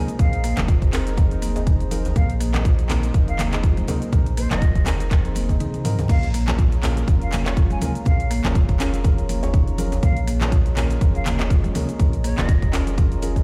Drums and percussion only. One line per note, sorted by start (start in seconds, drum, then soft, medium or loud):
0.08 closed hi-hat soft
0.08 shaker soft
0.19 kick loud
0.19 closed hi-hat medium
0.19 muted conga medium
0.19 high conga medium
0.19 low conga medium
0.19 shaker soft
0.33 closed hi-hat soft
0.33 shaker soft
0.44 open hi-hat medium
0.44 shaker medium
0.57 clap medium
0.57 closed hi-hat soft
0.57 mid tom medium
0.57 djembe slap loud
0.57 muted conga soft
0.57 high conga medium
0.57 djembe tone medium
0.57 shaker soft
0.68 kick loud
0.68 closed hi-hat medium
0.68 shaker medium
0.82 kick medium
0.82 closed hi-hat soft
0.82 muted conga medium
0.82 shaker soft
0.93 clap medium
0.93 open hi-hat medium
0.93 djembe tone medium
0.93 shaker medium
1.07 closed hi-hat soft
1.07 muted conga soft
1.07 shaker soft
1.17 kick loud
1.17 closed hi-hat medium
1.17 djembe tone medium
1.17 shaker medium
1.31 closed hi-hat soft
1.31 shaker soft
1.42 open hi-hat medium
1.42 muted conga soft
1.42 shaker medium
1.56 closed hi-hat soft
1.56 djembe tone medium
1.56 shaker soft
1.67 kick loud
1.67 closed hi-hat medium
1.67 mid tom medium
1.67 muted conga soft
1.67 shaker soft
1.80 closed hi-hat soft
1.80 shaker soft
1.91 open hi-hat medium
1.91 muted conga medium
1.91 shaker medium
2.05 closed hi-hat soft
2.05 djembe tone medium
2.05 shaker soft
2.16 kick loud
2.16 closed hi-hat medium
2.16 muted conga medium
2.16 high conga medium
2.16 low conga loud
2.16 shaker soft
2.30 closed hi-hat soft
2.30 shaker soft
2.41 open hi-hat medium
2.41 shaker medium
2.54 clap medium
2.54 closed hi-hat soft
2.54 djembe slap loud
2.54 muted conga soft
2.54 djembe tone medium
2.54 high conga medium
2.54 shaker soft
2.65 kick loud
2.65 closed hi-hat medium
2.65 shaker medium
2.79 closed hi-hat soft
2.79 muted conga medium
2.79 shaker soft
2.90 clap medium
2.90 open hi-hat medium
2.90 djembe tone medium
2.90 low conga medium
2.90 shaker medium
3.03 closed hi-hat soft
3.03 muted conga soft
3.03 shaker soft
3.14 kick loud
3.14 closed hi-hat medium
3.14 shaker medium
3.28 closed hi-hat soft
3.28 shaker soft
3.38 clap medium
3.38 open hi-hat loud
3.38 mid tom medium
3.38 muted conga medium
3.38 high conga medium
3.38 djembe tone medium
3.38 shaker medium
3.53 clap medium
3.53 closed hi-hat soft
3.53 djembe slap medium
3.53 shaker soft
3.63 kick loud
3.63 closed hi-hat medium
3.63 muted conga soft
3.63 shaker soft
3.77 closed hi-hat soft
3.77 high conga medium
3.77 shaker soft
3.88 open hi-hat medium
3.88 mid tom medium
3.88 muted conga medium
3.88 high conga medium
3.88 djembe tone medium
3.88 shaker medium
4.02 closed hi-hat soft
4.02 shaker soft
4.12 kick loud
4.12 closed hi-hat medium
4.12 muted conga medium
4.12 high conga medium
4.12 low conga medium
4.12 shaker medium
4.26 closed hi-hat soft
4.26 shaker soft
4.37 open hi-hat medium
4.37 shaker medium
4.51 clap medium
4.51 closed hi-hat soft
4.51 mid tom medium
4.51 muted conga soft
4.51 djembe slap loud
4.51 djembe tone medium
4.51 high conga medium
4.51 shaker soft
4.62 kick loud
4.62 closed hi-hat medium
4.62 shaker medium
4.75 kick medium
4.75 closed hi-hat soft
4.75 muted conga medium
4.75 high conga medium
4.75 shaker soft
4.86 clap loud
4.86 open hi-hat medium
4.86 djembe slap medium
4.86 djembe tone medium
4.86 low conga medium
4.86 shaker medium
5.00 closed hi-hat soft
5.00 muted conga soft
5.00 shaker soft
5.11 kick loud
5.11 clap medium
5.11 closed hi-hat medium
5.11 high tom medium
5.11 djembe tone medium
5.11 shaker medium
5.25 closed hi-hat soft
5.25 high tom medium
5.25 shaker soft
5.35 open hi-hat loud
5.35 muted conga medium
5.35 shaker medium
5.49 kick medium
5.49 closed hi-hat soft
5.49 mid tom medium
5.49 djembe tone medium
5.49 shaker soft
5.60 closed hi-hat medium
5.60 mid tom medium
5.60 muted conga soft
5.60 shaker medium
5.74 closed hi-hat soft
5.74 mid tom medium
5.74 shaker soft
5.85 mid tom loud
5.85 open hi-hat loud
5.85 muted conga medium
5.85 shaker medium
5.99 closed hi-hat soft
5.99 mid tom medium
5.99 djembe tone medium
5.99 shaker soft
6.08 kick loud
6.08 closed hi-hat medium
6.08 crash medium
6.08 muted conga medium
6.08 high conga medium
6.08 low conga loud
6.08 shaker medium
6.23 closed hi-hat soft
6.23 shaker soft
6.34 open hi-hat medium
6.34 shaker medium
6.48 clap loud
6.48 closed hi-hat soft
6.48 muted conga soft
6.48 djembe slap loud
6.48 high conga medium
6.48 djembe tone medium
6.48 shaker soft
6.59 kick loud
6.59 closed hi-hat medium
6.59 shaker medium
6.72 closed hi-hat soft
6.72 muted conga medium
6.72 shaker soft
6.83 clap loud
6.83 open hi-hat medium
6.83 djembe tone medium
6.83 low conga medium
6.83 shaker loud
6.97 closed hi-hat soft
6.97 muted conga soft
6.97 shaker soft
7.08 kick loud
7.08 closed hi-hat medium
7.08 shaker medium
7.22 closed hi-hat soft
7.22 shaker soft
7.32 clap loud
7.32 open hi-hat loud
7.32 mid tom medium
7.32 muted conga medium
7.32 high conga medium
7.32 djembe tone medium
7.32 shaker medium
7.46 clap medium
7.46 closed hi-hat soft
7.46 djembe slap medium
7.46 shaker soft
7.57 kick loud
7.57 closed hi-hat medium
7.57 muted conga soft
7.57 shaker medium
7.70 closed hi-hat soft
7.70 high conga medium
7.70 shaker soft
7.81 open hi-hat loud
7.81 mid tom medium
7.81 muted conga medium
7.81 high conga medium
7.81 djembe tone medium
7.81 shaker medium
7.95 closed hi-hat soft
7.95 shaker soft
8.05 kick loud
8.05 closed hi-hat medium
8.05 muted conga medium
8.05 high conga medium
8.05 low conga loud
8.05 shaker medium
8.20 closed hi-hat soft
8.20 shaker soft
8.31 open hi-hat medium
8.31 shaker loud
8.44 clap loud
8.44 closed hi-hat soft
8.44 mid tom medium
8.44 muted conga soft
8.44 djembe slap loud
8.44 high conga loud
8.44 djembe tone medium
8.44 shaker soft
8.55 kick loud
8.55 closed hi-hat medium
8.55 shaker medium
8.69 kick medium
8.69 closed hi-hat soft
8.69 muted conga medium
8.69 shaker soft
8.80 clap loud
8.80 open hi-hat medium
8.80 djembe tone medium
8.80 shaker loud
8.93 closed hi-hat soft
8.93 muted conga soft
8.93 shaker soft
9.04 kick loud
9.04 closed hi-hat medium
9.04 djembe tone medium
9.04 shaker medium
9.18 closed hi-hat soft
9.18 shaker soft
9.29 open hi-hat medium
9.29 muted conga medium
9.29 shaker loud
9.43 closed hi-hat soft
9.43 djembe tone medium
9.43 shaker soft
9.54 kick loud
9.54 closed hi-hat medium
9.54 mid tom medium
9.54 muted conga soft
9.54 shaker medium
9.68 closed hi-hat soft
9.68 shaker soft
9.78 open hi-hat medium
9.78 muted conga medium
9.78 shaker loud
9.92 closed hi-hat soft
9.92 djembe tone medium
9.92 shaker soft
10.03 kick loud
10.03 closed hi-hat medium
10.03 muted conga medium
10.03 high conga loud
10.03 low conga medium
10.03 shaker medium
10.17 closed hi-hat soft
10.17 shaker soft
10.28 open hi-hat medium
10.28 shaker loud
10.41 clap loud
10.41 closed hi-hat soft
10.41 muted conga soft
10.41 djembe slap loud
10.41 high conga loud
10.41 djembe tone medium
10.41 shaker soft
10.52 kick loud
10.52 closed hi-hat medium
10.52 shaker medium
10.66 closed hi-hat soft
10.66 muted conga medium
10.66 shaker soft
10.77 clap loud
10.77 open hi-hat medium
10.77 djembe tone medium
10.77 low conga medium
10.77 shaker loud
10.90 closed hi-hat soft
10.90 muted conga soft
10.90 shaker soft
11.01 kick loud
11.01 closed hi-hat medium
11.01 shaker medium
11.15 closed hi-hat soft
11.15 shaker soft
11.26 clap loud
11.26 open hi-hat medium
11.26 mid tom medium
11.26 muted conga medium
11.26 djembe tone medium
11.26 high conga medium
11.26 shaker loud
11.39 clap medium
11.39 closed hi-hat soft
11.39 djembe slap medium
11.39 shaker soft
11.50 kick loud
11.50 closed hi-hat medium
11.50 muted conga soft
11.50 shaker medium
11.64 closed hi-hat soft
11.64 high conga loud
11.64 shaker soft
11.75 open hi-hat medium
11.75 mid tom medium
11.75 muted conga soft
11.75 djembe tone loud
11.75 high conga medium
11.75 shaker loud
11.89 closed hi-hat soft
11.89 shaker soft
11.99 kick loud
11.99 closed hi-hat medium
11.99 muted conga medium
11.99 high conga medium
11.99 low conga medium
11.99 shaker medium
12.13 closed hi-hat soft
12.13 shaker soft
12.24 open hi-hat medium
12.24 shaker medium
12.38 clap medium
12.38 closed hi-hat soft
12.38 mid tom medium
12.38 muted conga soft
12.38 djembe slap loud
12.38 high conga loud
12.38 djembe tone medium
12.38 shaker soft
12.49 kick loud
12.49 closed hi-hat medium
12.49 shaker medium
12.62 kick medium
12.62 closed hi-hat soft
12.62 muted conga soft
12.62 shaker soft
12.73 clap medium
12.73 open hi-hat medium
12.73 djembe slap medium
12.73 djembe tone medium
12.73 shaker loud
12.87 closed hi-hat soft
12.87 muted conga soft
12.87 shaker soft
12.97 kick loud
12.97 closed hi-hat medium
12.97 djembe tone medium
12.97 shaker medium
13.12 closed hi-hat soft
13.12 shaker soft
13.22 open hi-hat medium
13.22 muted conga medium
13.22 shaker loud
13.36 kick medium
13.36 closed hi-hat soft
13.36 djembe tone medium
13.36 shaker soft